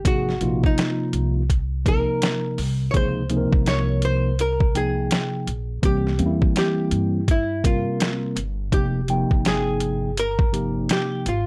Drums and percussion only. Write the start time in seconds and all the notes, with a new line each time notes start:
0.05 kick, closed hi-hat
0.29 snare
0.41 closed hi-hat
0.64 kick
0.78 snare, closed hi-hat
1.13 closed hi-hat
1.50 kick, closed hi-hat
1.86 kick, closed hi-hat
2.22 snare, closed hi-hat
2.58 open hi-hat
2.94 kick, closed hi-hat
3.30 closed hi-hat
3.53 kick
3.66 snare, closed hi-hat
4.02 closed hi-hat
4.39 closed hi-hat
4.60 kick
4.75 closed hi-hat
5.11 snare, closed hi-hat
5.47 closed hi-hat
5.83 kick, closed hi-hat
6.07 snare
6.19 closed hi-hat
6.42 kick
6.56 snare, closed hi-hat
6.91 closed hi-hat
7.28 kick, closed hi-hat
7.64 kick, closed hi-hat
8.00 snare, closed hi-hat
8.37 closed hi-hat
8.72 kick, closed hi-hat
9.08 closed hi-hat
9.31 kick
9.45 snare, closed hi-hat
9.80 closed hi-hat
10.17 closed hi-hat
10.39 kick
10.54 closed hi-hat
10.89 snare, closed hi-hat
11.26 closed hi-hat